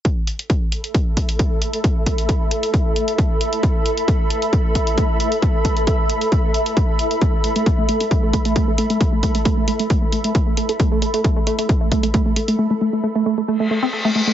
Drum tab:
HH |x-xxx-xxx-xxx-xx|x-xxx-xxx-xxx-xx|x-xxx-xxx-xxx-xx|x-xxx-xxx-xxx-xx|
BD |o---o---o-o-o---|o-o-o---o---o---|o---o---o-o-o---|o-o-o---o---o---|

HH |x-oxx-oxx-oxx-ox|x-oxx-oxx-oxx-ox|x-oxx-oxx-oxx-ox|----------------|
BD |o---o---o-o-o---|o-o-o---o---o---|o---o---o-o-o---|----------------|